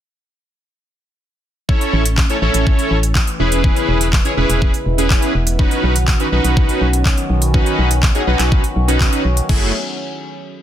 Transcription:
1.69 analog synth pad E3 A3 C#4, analog polysynth C#4 E4 A4 C#5, kick
1.81 closed hi-hat
1.93 fm bass A1
2.05 closed hi-hat
2.18 kick, clap
2.30 analog polysynth C#4 E4 A4 C#5, closed hi-hat
2.42 fm bass A1, analog polysynth C#4 E4 A4 C#5
2.54 fm bass A1, closed hi-hat
2.67 kick
2.79 closed hi-hat
2.91 fm bass A1
3.03 closed hi-hat
3.15 kick, clap
3.27 closed hi-hat
3.39 fm bass E1, analog synth pad C#3 G#3 B3 E4, analog polysynth C#4 E4 G#4 B4
3.52 closed hi-hat
3.64 kick
3.76 closed hi-hat
3.89 fm bass E1
4.01 closed hi-hat
4.13 kick, clap
4.25 analog polysynth C#4 E4 G#4 C#5, closed hi-hat
4.37 fm bass E1, analog polysynth C#4 E4 G#4 B4
4.49 fm bass E1, closed hi-hat
4.62 kick
4.74 closed hi-hat
4.86 fm bass E1
4.98 analog polysynth C#4 E4 G#4 B4, closed hi-hat
5.10 kick, clap
5.22 closed hi-hat
5.35 fm bass E1
5.47 closed hi-hat
5.59 analog synth pad D#3 F#3 C#4 F#4, analog polysynth C#4 D#4 F#4 B4, kick
5.71 closed hi-hat
5.84 fm bass B1
5.96 closed hi-hat
6.08 kick, clap
6.20 analog polysynth C#4 D#4 F#4 B4, closed hi-hat
6.32 fm bass B1, analog polysynth C#4 D#4 F#4 B4
6.44 fm bass B1, closed hi-hat
6.57 kick
6.69 closed hi-hat
6.81 fm bass B1
6.93 closed hi-hat
7.05 kick, clap
7.18 closed hi-hat
7.30 fm bass B1
7.42 closed hi-hat
7.54 analog polysynth C#4 D#4 F#4 B4, kick
7.66 closed hi-hat
7.79 fm bass B1
7.91 closed hi-hat
8.03 kick, clap
8.15 analog polysynth C#4 D#4 F#4 G#4, closed hi-hat
8.27 fm bass B1, analog polysynth C#4 D#4 F#4 B4
8.39 fm bass B1, clap, closed hi-hat
8.52 kick
8.64 closed hi-hat
8.76 fm bass B1
8.88 analog polysynth C#4 D#4 F#4 B4, closed hi-hat
9.01 kick, clap
9.13 closed hi-hat
9.25 fm bass B1
9.37 closed hi-hat
9.49 fm bass F#1, analog synth pad F#3 A3 C#4 E4 G#4, analog polysynth A3 E4 F#4 G#4, kick, crash

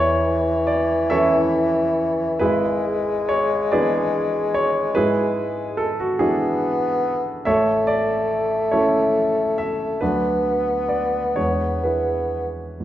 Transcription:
Already playing: grand piano E2 C#5, bassoon E3
0.67 grand piano D5
1.10 grand piano E3 C#4 E4 A4 C#5 E5
2.39 grand piano G#1 E4 G#4 B4, bassoon G#3
3.29 grand piano C#5
3.72 grand piano E3 B3 D4 G#4 B4 D5
4.54 grand piano C#5
4.95 grand piano G#2 E4 G#4 B4
5.77 grand piano A4
6.00 grand piano F#4
6.19 grand piano E3 B3 D4 E4 G#4, bassoon B3
7.45 grand piano A1 A4 C#5 E5, bassoon A3
7.87 grand piano D5
8.71 grand piano A3 C#4 E4 A4 C#5
9.58 grand piano E5
10.01 grand piano D2 F#3 B3 D4 F#4 B4, bassoon B3
10.89 grand piano D5
11.36 grand piano E2 E3 G#3 D4 C#5
11.84 grand piano E4 G#4 B4
12.80 grand piano A1

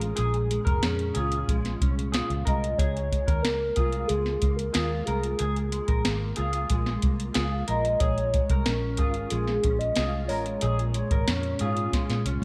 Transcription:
Already playing: fingered electric bass A1, clean electric guitar G#3 C#4 F4, soft synth lead G#4
0.01 closed hi-hat
0.16 fingered electric bass A#1, clean electric guitar A#2 G#4, closed hi-hat
0.34 closed hi-hat
0.51 clean electric guitar G#3, closed hi-hat
0.65 fingered electric bass F1, clean electric guitar A#4, kick, closed hi-hat
0.83 fingered electric bass F2, clean electric guitar C#4, snare, closed hi-hat
0.99 closed hi-hat
1.14 fingered electric bass C#2, clean electric guitar F4 G#4, closed hi-hat
1.32 closed hi-hat
1.48 fingered electric bass A#1, clean electric guitar G#3, kick, closed hi-hat
1.65 snare, closed hi-hat
1.81 fingered electric bass C2, clean electric guitar C#4, kick, closed hi-hat
1.99 closed hi-hat
2.12 clean electric guitar F4 G#4, snare, closed hi-hat
2.30 fingered electric bass C#2, closed hi-hat
2.45 fingered electric bass C2, clean electric guitar G#3 A#4, soft synth lead D#5, kick, closed hi-hat
2.64 closed hi-hat
2.78 fingered electric bass C#2, clean electric guitar G#4, soft synth lead C#5, kick, closed hi-hat
2.97 closed hi-hat
3.12 clean electric guitar G#3, kick, closed hi-hat
3.28 fingered electric bass D#2, clean electric guitar A#4, kick, closed hi-hat
3.43 fingered electric bass C#2, clean electric guitar A#3, soft synth lead A#4, snare, closed hi-hat
3.76 fingered electric bass C2, clean electric guitar F4 G#4, kick, closed hi-hat
3.92 closed hi-hat
4.08 fingered electric bass C#2, clean electric guitar G#3, soft synth lead G#4, closed hi-hat
4.26 snare
4.42 fingered electric bass C#2, clean electric guitar A#3, kick, closed hi-hat
4.56 soft synth lead A#4, closed hi-hat
4.74 fingered electric bass D#2, clean electric guitar F4 G#4, snare, closed hi-hat
5.06 fingered electric bass C2, clean electric guitar G#3 A#4, soft synth lead G#4, closed hi-hat
5.23 closed hi-hat
5.39 fingered electric bass C#2, clean electric guitar G#4, closed hi-hat
5.56 closed hi-hat
5.72 clean electric guitar G#3, closed hi-hat
5.88 fingered electric bass A#1, clean electric guitar A#4, kick, closed hi-hat
6.05 fingered electric bass G#1, clean electric guitar A#3, snare, closed hi-hat
6.36 fingered electric bass C#2, clean electric guitar F4 G#4, closed hi-hat
6.53 closed hi-hat
6.70 fingered electric bass A#1, clean electric guitar G#3, kick, closed hi-hat
6.86 snare
7.02 fingered electric bass C2, clean electric guitar A#3, kick, closed hi-hat
7.20 closed hi-hat
7.34 fingered electric bass C#2, clean electric guitar F4 G#4, snare, closed hi-hat
7.68 fingered electric bass A#1, clean electric guitar G#3 A#4, soft synth lead D#5, closed hi-hat
7.85 closed hi-hat
8.00 fingered electric bass A#1, clean electric guitar G#4, soft synth lead C#5, kick, closed hi-hat
8.18 closed hi-hat
8.34 clean electric guitar G#3, kick, closed hi-hat
8.50 fingered electric bass C2, clean electric guitar A#4, kick, closed hi-hat
8.65 fingered electric bass A#1, clean electric guitar C#4, soft synth lead A#4, snare, closed hi-hat
8.97 fingered electric bass G#1, clean electric guitar F4 G#4, kick, closed hi-hat
9.14 closed hi-hat
9.30 fingered electric bass A#1, clean electric guitar G#3, soft synth lead G#4, closed hi-hat
9.48 snare
9.64 fingered electric bass A#1, clean electric guitar C#4, kick, closed hi-hat
9.79 soft synth lead D#5, closed hi-hat
9.96 fingered electric bass C2, clean electric guitar F4 G#4, snare, closed hi-hat
10.28 fingered electric bass A1, clean electric guitar G#3 A#4, soft synth lead C#5, open hi-hat
10.46 closed hi-hat
10.61 fingered electric bass A#1, clean electric guitar A#2 G#4, closed hi-hat
10.79 closed hi-hat
10.94 clean electric guitar G#3, closed hi-hat
11.11 fingered electric bass G#1, clean electric guitar A#4, kick, closed hi-hat
11.28 fingered electric bass F2, clean electric guitar C#4, snare, closed hi-hat
11.43 closed hi-hat
11.59 fingered electric bass G#2, clean electric guitar F4 G#4, closed hi-hat
11.77 closed hi-hat
11.93 clean electric guitar G#3, kick, snare, closed hi-hat
12.10 fingered electric bass A#2, snare, closed hi-hat
12.25 fingered electric bass C2, clean electric guitar C#4, closed hi-hat

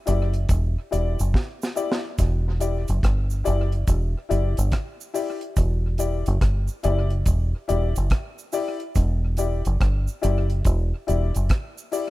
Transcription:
0.06 fingered electric bass F#1, upright piano E4 G4 D5, closed hi-hat, cabasa
0.34 closed hi-hat
0.49 fingered electric bass E1, kick, closed hi-hat, cabasa
0.91 fingered electric bass E1, upright piano E4 G4 D5, closed hi-hat, cabasa
1.19 fingered electric bass F#1, closed hi-hat, cabasa
1.34 kick, snare
1.62 snare, cabasa
1.75 upright piano E4 G4 D5, cabasa
1.92 snare
2.18 fingered electric bass E1, kick, closed hi-hat, cabasa
2.60 upright piano E4 G4 D5, closed hi-hat, cabasa
2.88 fingered electric bass F#1, closed hi-hat, cabasa
3.03 fingered electric bass G1, kick, cross-stick, closed hi-hat
3.30 cabasa
3.44 fingered electric bass F#1, upright piano E4 G4 D5, closed hi-hat, cabasa
3.72 closed hi-hat
3.87 fingered electric bass E1, kick, closed hi-hat, cabasa
4.29 fingered electric bass F#1, upright piano E4 G4 D5, closed hi-hat, cabasa
4.57 fingered electric bass G1, closed hi-hat, cabasa
4.72 kick, cross-stick, closed hi-hat
5.01 cabasa
5.14 upright piano E4 G4 D5, open hi-hat, cabasa
5.41 closed hi-hat
5.56 fingered electric bass E1, kick, closed hi-hat, cabasa
5.98 upright piano E4 G4 D5, closed hi-hat, cabasa
6.26 fingered electric bass F#1, closed hi-hat, cabasa
6.41 fingered electric bass G1, kick, cross-stick, closed hi-hat
6.68 cabasa
6.83 fingered electric bass F#1, upright piano E4 G4 D5, closed hi-hat, cabasa
7.10 closed hi-hat
7.26 fingered electric bass E1, kick, closed hi-hat, cabasa
7.68 fingered electric bass E1, upright piano E4 G4 D5, closed hi-hat, cabasa
7.96 fingered electric bass F#1, closed hi-hat, cabasa
8.10 kick, cross-stick, closed hi-hat
8.38 cabasa
8.52 upright piano E4 G4 D5, open hi-hat, cabasa
8.80 closed hi-hat
8.95 fingered electric bass E1, kick, closed hi-hat, cabasa
9.37 upright piano E4 G4 D5, closed hi-hat, cabasa
9.65 fingered electric bass F#1, closed hi-hat, cabasa
9.81 fingered electric bass G1, kick, cross-stick, closed hi-hat
10.07 cabasa
10.22 fingered electric bass F#1, upright piano E4 G4 D5, closed hi-hat, cabasa
10.50 closed hi-hat
10.65 fingered electric bass E1, kick, closed hi-hat, cabasa
11.07 fingered electric bass E1, upright piano E4 G4 D5, closed hi-hat, cabasa
11.35 fingered electric bass F#1, closed hi-hat, cabasa
11.49 kick, cross-stick, closed hi-hat
11.78 cabasa
11.92 upright piano E4 G4 D5, open hi-hat, cabasa

